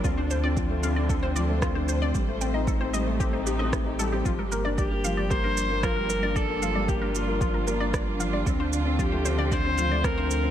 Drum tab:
SH |xxxxxxxx|xxxxxxxx|xxxxxxxx|xxxxxxxx|
SD |------r-|------r-|------r-|------r-|
BD |o-o-o-o-|o-o-o-o-|o-o-o-o-|o-o-o-o-|

SH |xxxxxxxx|
SD |------r-|
BD |o-o-o-o-|